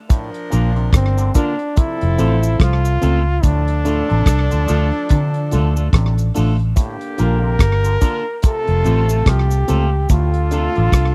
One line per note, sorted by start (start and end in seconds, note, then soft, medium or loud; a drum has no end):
0.09 0.30 A2 medium
0.09 1.33 F3 medium
0.09 1.33 D4 medium
0.09 1.33 A#4 medium
0.09 kick loud
0.09 closed hi-hat medium
0.09 cabasa medium
0.34 closed hi-hat medium
0.50 0.88 A#1 loud
0.50 0.72 A#2 medium
0.50 0.72 A#3 medium
0.50 0.69 D4 medium
0.50 0.72 D4 medium
0.50 0.69 F4 medium
0.50 0.72 F4 medium
0.50 0.69 A#4 loud
0.50 0.72 A#4 medium
0.50 closed hi-hat medium
0.50 cabasa medium
0.75 0.90 C3 medium
0.75 closed hi-hat soft
0.93 1.29 G1 loud
0.93 1.33 C4 loud
0.93 kick loud
0.93 cross-stick loud
0.93 closed hi-hat loud
0.93 cabasa medium
1.17 1.32 D3 medium
1.17 1.25 F4 soft
1.17 1.25 A#4 soft
1.17 closed hi-hat soft
1.17 cabasa medium
1.34 1.55 D3 medium
1.34 1.55 A#3 medium
1.34 1.52 D4 loud
1.34 1.80 D4 loud
1.34 1.56 D4 loud
1.34 1.52 F4 loud
1.34 1.56 F4 loud
1.34 1.52 A#4 loud
1.34 1.56 A#4 medium
1.34 kick loud
1.34 closed hi-hat medium
1.34 cabasa medium
1.59 closed hi-hat soft
1.76 1.97 C3 medium
1.76 2.99 F3 medium
1.76 2.99 C4 medium
1.76 2.63 E4 loud
1.76 2.99 A4 loud
1.76 kick loud
1.76 closed hi-hat medium
1.76 cabasa medium
2.01 2.17 F1 medium
2.01 closed hi-hat medium
2.18 2.55 A1 loud
2.18 2.39 D3 medium
2.18 2.39 A3 medium
2.18 2.35 C4 loud
2.18 2.39 C4 medium
2.18 2.35 F4 medium
2.18 2.39 F4 medium
2.18 2.36 A4 loud
2.18 2.39 A4 medium
2.18 closed hi-hat medium
2.18 cabasa medium
2.43 cabasa medium
2.59 2.96 C2 loud
2.59 2.80 F3 medium
2.59 3.46 F4 loud
2.59 kick loud
2.59 cross-stick loud
2.59 closed hi-hat loud
2.85 closed hi-hat medium
2.85 cabasa medium
3.01 3.39 C#2 medium
3.01 3.22 C3 medium
3.01 3.22 A3 medium
3.01 3.19 C4 loud
3.01 3.22 C4 medium
3.01 3.19 F4 medium
3.01 3.22 F4 medium
3.01 3.19 A4 loud
3.01 3.22 A4 loud
3.01 closed hi-hat medium
3.01 cabasa medium
3.43 4.01 D2 loud
3.43 3.64 A2 medium
3.43 6.31 F3 medium
3.43 6.35 D4 loud
3.43 6.32 D4 medium
3.43 6.32 A4 loud
3.43 kick loud
3.43 closed hi-hat medium
3.43 cabasa medium
3.68 closed hi-hat medium
3.85 4.05 A2 medium
3.85 4.06 A3 medium
3.85 4.02 D4 medium
3.85 4.06 D4 medium
3.85 4.02 F4 medium
3.85 4.06 F4 medium
3.85 4.03 A4 loud
3.85 4.06 A4 medium
3.85 closed hi-hat medium
3.85 cabasa medium
4.08 4.25 A1 medium
4.08 4.23 C3 medium
4.08 closed hi-hat soft
4.26 4.48 C2 medium
4.26 kick loud
4.26 cross-stick loud
4.26 closed hi-hat loud
4.26 cabasa medium
4.50 4.67 D2 medium
4.50 4.65 D3 medium
4.50 4.58 F4 soft
4.50 4.59 A4 soft
4.50 closed hi-hat medium
4.50 cabasa medium
4.67 4.90 D2 medium
4.67 4.88 F3 medium
4.67 4.89 A3 medium
4.67 4.85 D4 loud
4.67 4.89 D4 loud
4.67 4.86 F4 medium
4.67 4.89 F4 loud
4.67 4.86 A4 loud
4.67 4.89 A4 loud
4.67 closed hi-hat medium
4.67 cabasa medium
4.92 closed hi-hat soft
5.09 5.30 C3 medium
5.09 5.55 D3 loud
5.09 kick loud
5.09 closed hi-hat medium
5.09 cabasa medium
5.34 closed hi-hat medium
5.51 5.89 D2 medium
5.51 5.72 D3 medium
5.51 5.72 A3 medium
5.51 5.69 D4 loud
5.51 5.72 D4 medium
5.51 5.69 F4 medium
5.51 5.73 F4 medium
5.51 5.69 A4 loud
5.51 5.73 A4 loud
5.51 closed hi-hat medium
5.51 cabasa medium
5.76 5.88 A3 medium
5.76 5.88 D4 medium
5.76 5.88 F4 medium
5.76 5.87 A4 medium
5.76 cabasa medium
5.93 6.30 A1 loud
5.93 6.14 C3 medium
5.93 kick loud
5.93 cross-stick loud
5.93 closed hi-hat medium
6.18 closed hi-hat medium
6.18 cabasa medium
6.34 6.72 A1 medium
6.34 6.55 D3 medium
6.34 6.55 A3 loud
6.34 6.52 D4 loud
6.34 6.55 D4 medium
6.34 6.52 F4 medium
6.34 6.56 F4 medium
6.34 6.52 A4 loud
6.34 6.56 A4 loud
6.34 open hi-hat medium
6.34 cabasa medium
6.59 closed hi-hat soft
6.76 6.97 A2 medium
6.76 8.00 D3 medium
6.76 8.00 A#3 medium
6.76 8.00 G4 medium
6.76 kick loud
6.76 closed hi-hat medium
6.76 cabasa medium
7.01 closed hi-hat medium
7.18 7.55 A#1 loud
7.18 7.39 A#2 medium
7.18 7.39 A#3 medium
7.18 7.35 D4 medium
7.18 7.39 D4 medium
7.18 7.35 F4 medium
7.18 7.39 F4 medium
7.18 7.36 A#4 loud
7.18 7.39 A#4 medium
7.18 8.41 A#4 loud
7.18 closed hi-hat medium
7.18 cabasa medium
7.42 7.57 C3 medium
7.59 7.96 G1 loud
7.59 kick loud
7.59 cross-stick loud
7.59 closed hi-hat loud
7.59 cabasa medium
7.84 7.99 D3 medium
7.84 7.92 F4 soft
7.84 7.92 A#4 soft
7.84 closed hi-hat medium
7.84 cabasa medium
8.01 8.22 D3 medium
8.01 8.22 A#3 medium
8.01 8.18 D4 loud
8.01 8.22 D4 medium
8.01 8.19 F4 medium
8.01 8.23 F4 loud
8.01 8.19 A#4 loud
8.01 8.23 A#4 medium
8.01 kick loud
8.01 closed hi-hat medium
8.01 cabasa medium
8.42 8.64 C3 medium
8.42 9.66 C3 medium
8.42 9.66 A3 medium
8.42 9.66 F4 loud
8.42 9.31 A4 loud
8.42 kick loud
8.42 closed hi-hat loud
8.42 cabasa medium
8.68 8.83 F1 loud
8.68 closed hi-hat medium
8.84 9.22 A1 medium
8.84 9.05 D3 medium
8.84 9.05 A3 medium
8.84 9.02 C4 loud
8.84 9.05 C4 medium
8.84 9.02 F4 loud
8.84 9.06 F4 medium
8.84 9.03 A4 loud
8.84 9.06 A4 loud
8.84 closed hi-hat medium
8.84 cabasa medium
9.09 9.22 A3 medium
9.09 9.21 C4 medium
9.09 9.21 F4 medium
9.09 9.21 A4 medium
9.09 closed hi-hat soft
9.09 cabasa medium
9.26 9.63 C2 loud
9.26 9.47 F3 medium
9.26 10.11 G4 loud
9.26 kick loud
9.26 cross-stick loud
9.26 closed hi-hat loud
9.51 closed hi-hat medium
9.51 cabasa medium
9.68 10.05 C#2 medium
9.68 9.89 C3 medium
9.68 9.89 A3 medium
9.68 9.85 C4 loud
9.68 9.89 C4 medium
9.68 9.85 F4 medium
9.68 9.89 F4 loud
9.68 9.86 A4 loud
9.68 9.89 A4 medium
9.68 closed hi-hat medium
9.68 cabasa medium
10.09 10.67 D2 loud
10.09 10.31 A2 medium
10.09 11.15 D4 medium
10.09 11.15 F4 medium
10.09 11.15 F4 loud
10.09 11.15 A4 loud
10.09 kick loud
10.09 closed hi-hat medium
10.09 cabasa medium
10.34 closed hi-hat medium
10.51 10.72 C3 medium
10.51 10.72 A3 medium
10.51 10.68 D4 loud
10.51 10.72 D4 medium
10.51 10.69 F4 medium
10.51 10.72 F4 loud
10.51 10.69 A4 loud
10.51 10.73 A4 medium
10.51 closed hi-hat medium
10.51 cabasa soft
10.76 10.92 A1 medium
10.76 10.91 D3 medium
10.76 closed hi-hat soft
10.92 11.14 C2 medium
10.92 kick loud
10.92 cross-stick loud
10.92 closed hi-hat loud
10.92 cabasa medium